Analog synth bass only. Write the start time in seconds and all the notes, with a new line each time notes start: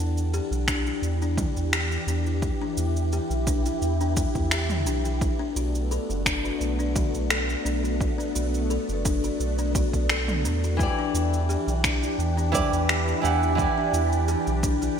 Already playing: E2
0.51 B1
1.02 E2
1.56 E2
2.07 E2
2.77 E2
3.30 B1
3.82 E2
4.35 E2
4.85 B1
5.56 B1
6.10 F#1
6.61 B1
7.14 B1
7.65 B1
8.36 B1
8.89 F#1
9.40 B1
9.94 B1
10.44 E2
11.14 E2
11.67 B1
12.18 E2
12.72 E2
13.24 E2
13.93 E2
14.47 B1